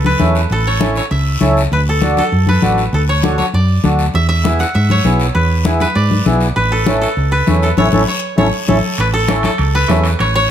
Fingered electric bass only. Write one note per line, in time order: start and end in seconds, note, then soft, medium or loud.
0.00 0.14 C#2 medium
0.20 0.45 E2 medium
0.51 0.99 A1 medium
1.11 1.35 C#2 medium
1.41 1.66 C#2 medium
1.72 2.20 D2 medium
2.32 2.57 F#2 medium
2.63 2.87 A1 medium
2.93 3.41 D2 loud
3.54 3.78 F#2 medium
3.84 4.08 D2 medium
4.14 4.63 E2 medium
4.75 4.99 G#2 medium
5.05 5.29 B1 medium
5.35 5.84 E2 medium
5.96 6.20 G#2 medium
6.26 6.50 B1 medium
6.56 7.05 A1 medium
7.17 7.41 C#2 medium
7.47 7.71 E2 medium
7.78 7.89 A1 medium
7.93 8.04 A1 medium
8.38 8.49 A1 medium
8.68 8.79 A1 medium
8.98 9.47 A1 medium
9.59 9.83 C#2 medium
9.89 10.14 E2 medium
10.20 10.51 A1 medium